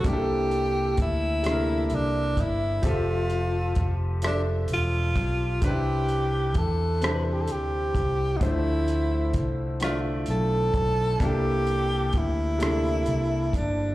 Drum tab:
HH |xxxxxx|xxxxxx|xxxxxx|xxxxxx|
SD |---r--|---r--|---r--|---r--|
BD |o-o--o|o-o--o|o-o--o|o-o--o|

HH |xxxxxx|
SD |---r--|
BD |o-o--o|